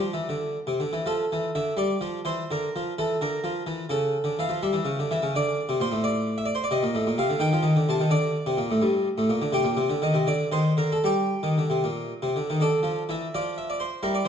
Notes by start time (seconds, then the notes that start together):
Already playing: D4
0.00 F3
0.14 E3
0.29 D3
0.67 C3
0.80 D3
0.93 E3
1.06 F3 A4
1.32 E3
1.55 D3 E5
1.77 G3 D5
2.01 F3
2.25 E3 C5
2.51 D3 A#4
2.76 F3
2.99 E3 A4
3.21 D3 A#4
3.44 F3
3.67 E3
3.90 C#3 A4
4.24 D3
4.39 E3 F5
4.49 F3
4.63 G3 E5
4.73 E3
4.85 C#3
4.99 D3
5.11 E3 E5
5.22 C#3
5.36 D3 D5
5.69 C3
5.80 A#2 C5
5.92 A2
6.04 D5
6.38 E5
6.46 D5
6.55 C5
6.64 D5
6.71 C3 D#5
6.83 A#2
6.95 A2
7.07 A#2
7.18 C3 F5
7.30 D3
7.40 D#3 G5
7.53 F3
7.63 D#3
7.76 D3
7.89 C3 A5
8.00 D#3
8.10 D3 D5
8.46 C3
8.57 A#2
8.71 A2
8.82 G2
9.18 A2
9.30 A#2
9.42 D3
9.53 C3 G4
9.64 A#2
9.77 C3
9.90 D3
10.02 D#3 D#5
10.14 C3
10.27 D3 D5
10.52 D#3 C5
10.77 D3 A#4
10.92 A4
11.04 G3 G4
11.43 D#3
11.58 D3
11.70 C3
11.84 A#2
12.22 C3
12.36 D3
12.50 D#3
12.60 D3 D4 A4
12.83 F3
13.09 E3 E5
13.35 F3 D5
13.58 E5
13.70 D5
13.80 C5
14.03 G3 E4 A#4
14.14 D5
14.25 E3